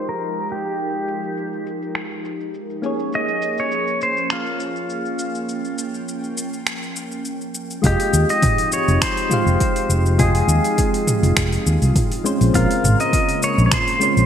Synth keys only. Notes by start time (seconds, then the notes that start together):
Already playing: G#3 F4 G4 D#5
2.82 A#3 C#4 G#4 C#5
7.82 G#3 F4 G4 D#5
9.29 G#3 F4 G4
9.33 F5
10.18 G#3 F4 G4 D#5
12.24 G#3 C4 C#4 C5
12.53 G#3 C4 C#4 A#4
13.99 G#3 C4 C#4 C5